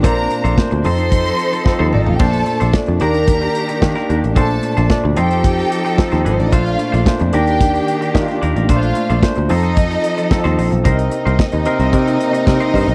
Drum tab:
CC |----------------|x---------------|----------------|----------------|
HH |x-xx-xoxxxxx----|-xxx-xxxx-xx-xxx|x-xx--xxxxxx-xxx|xxxx-xxxxxxx-xxx|
SD |----o-------o---|----o-------oo--|----o-------oo--|----o-------oo--|
T1 |-------------o--|----------------|----------------|----------------|
T2 |--------------o-|----------------|----------------|----------------|
FT |---------------o|----------------|----------------|----------------|
BD |o---o---o---o---|o---o---o---o---|o---o---o---o---|o---o---o---o---|

CC |----------------|----------------|
HH |xxxx-xoxxxxx-xox|xxxx-xxxxxxx-xox|
SD |----o-------oo--|----o-------o---|
T1 |----------------|----------------|
T2 |----------------|----------------|
FT |----------------|----------------|
BD |o---o---o---o---|o---o---o---o-o-|